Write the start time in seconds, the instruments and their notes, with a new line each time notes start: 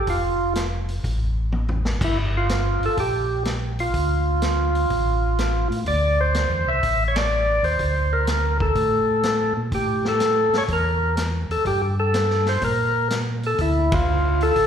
0.07 tonewheel organ F1 F4, kick, open hi-hat
0.55 snare, closed hi-hat
0.88 open hi-hat
1.03 tonewheel organ A1, kick, open hi-hat
1.52 high tom
1.69 floor tom
1.85 snare
2.01 tonewheel organ G1 E4, kick, crash
2.37 tonewheel organ F4
2.49 snare, closed hi-hat
2.81 tonewheel organ G1, open hi-hat
2.86 tonewheel organ A4
2.97 tonewheel organ A#1 G4, kick, open hi-hat
3.45 snare, closed hi-hat
3.79 tonewheel organ F4, open hi-hat
3.93 tonewheel organ D2, kick, open hi-hat
4.42 snare, closed hi-hat
4.75 open hi-hat
4.90 tonewheel organ A1, kick, open hi-hat
5.39 snare, closed hi-hat
5.70 tonewheel organ A2, open hi-hat
5.86 tonewheel organ D2 D5, kick, open hi-hat
6.21 tonewheel organ C5
6.34 snare, closed hi-hat
6.49 tonewheel organ E2
6.65 tonewheel organ C2 E5
6.83 tonewheel organ A1, kick, open hi-hat
7.08 tonewheel organ C#5
7.15 tonewheel organ D5, snare, ride
7.63 tonewheel organ D#2 C5, open hi-hat
7.79 tonewheel organ D2, kick, open hi-hat
8.13 tonewheel organ A#4
8.27 snare, closed hi-hat
8.60 tonewheel organ A4, kick
8.75 tonewheel organ A2, kick, open hi-hat
9.23 snare, closed hi-hat
9.57 tonewheel organ A#2
9.72 tonewheel organ A2 G4, kick, open hi-hat
10.05 tonewheel organ A4, snare
10.20 snare, closed hi-hat
10.53 tonewheel organ A2, snare, open hi-hat
10.58 tonewheel organ C#5
10.68 tonewheel organ E2, kick, open hi-hat
10.73 tonewheel organ A#4
11.17 snare, closed hi-hat
11.49 tonewheel organ E2 A4, open hi-hat
11.65 tonewheel organ G2 G4, kick, open hi-hat
12.00 tonewheel organ A4
12.14 snare, closed hi-hat
12.30 snare
12.46 tonewheel organ C5, snare, open hi-hat
12.62 tonewheel organ A#2 A#4, kick, open hi-hat
13.10 snare, closed hi-hat
13.43 tonewheel organ A4, open hi-hat
13.58 tonewheel organ D2 E4, kick, open hi-hat
13.92 tonewheel organ F4, kick, ride
14.41 tonewheel organ A4, open hi-hat
14.55 tonewheel organ A1, kick, open hi-hat